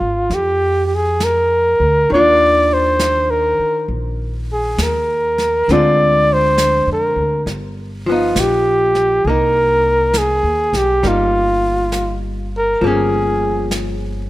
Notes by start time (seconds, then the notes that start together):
Already playing: G#3 B3 D4 F4
0.01 G#1
0.30 F2, brush sweep, snare
0.34 G4
0.86 G4
0.95 G#4
1.20 A#4, snare, hi-hat pedal
1.80 D2
2.10 D#2 D#3 D5, brush sweep
2.14 D4 F4
2.73 C5
2.99 snare, hi-hat pedal
3.30 A#4
3.59 muted upright bass stroke
3.88 A#1, brush sweep
4.53 G#4
4.78 D#2, snare, hi-hat pedal
4.83 A#4
5.38 snare
5.68 D2 D3 G#3 C4 F4, brush sweep, snare
5.72 D5
6.33 C5
6.58 snare, hi-hat pedal
6.87 F2
6.93 A#4
7.16 D2
7.46 G1, brush sweep, snare
8.06 F3 B3
8.12 D#4 F4
8.35 A#1, snare, hi-hat pedal
8.40 G4
8.95 snare
9.24 C2 A#3, brush sweep
9.29 D#4 A#4
10.14 snare, hi-hat pedal
10.18 G#4
10.43 D#2
10.73 B1, snare
10.77 G4
11.03 G1 G3 A#3 D#4, brush sweep, snare
11.08 F4
11.92 snare, hi-hat pedal
12.57 A#4
12.81 G1 F3 A#3, brush sweep
12.86 C#4 G#4
13.71 snare, hi-hat pedal